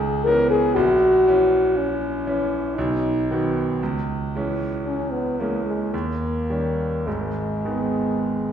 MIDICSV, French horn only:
0, 0, Header, 1, 2, 480
1, 0, Start_track
1, 0, Tempo, 1011804
1, 353, Time_signature, 3, 2, 24, 8
1, 1309, Tempo, 1045296
1, 2269, Tempo, 1071429
1, 2749, Tempo, 1149425
1, 3836, End_track
2, 0, Start_track
2, 0, Title_t, "French horn"
2, 0, Program_c, 0, 60
2, 0, Note_on_c, 0, 68, 88
2, 114, Note_on_c, 0, 70, 109
2, 121, Note_off_c, 0, 68, 0
2, 234, Note_off_c, 0, 70, 0
2, 237, Note_on_c, 0, 68, 99
2, 355, Note_on_c, 0, 66, 103
2, 362, Note_off_c, 0, 68, 0
2, 840, Note_on_c, 0, 61, 83
2, 847, Note_off_c, 0, 66, 0
2, 1307, Note_on_c, 0, 63, 84
2, 1314, Note_off_c, 0, 61, 0
2, 1786, Note_off_c, 0, 63, 0
2, 2274, Note_on_c, 0, 61, 80
2, 2390, Note_on_c, 0, 59, 79
2, 2396, Note_off_c, 0, 61, 0
2, 2511, Note_on_c, 0, 58, 69
2, 2518, Note_off_c, 0, 59, 0
2, 2627, Note_off_c, 0, 58, 0
2, 2630, Note_on_c, 0, 56, 66
2, 2749, Note_off_c, 0, 56, 0
2, 2755, Note_on_c, 0, 58, 73
2, 3228, Note_on_c, 0, 56, 75
2, 3234, Note_off_c, 0, 58, 0
2, 3836, Note_off_c, 0, 56, 0
2, 3836, End_track
0, 0, End_of_file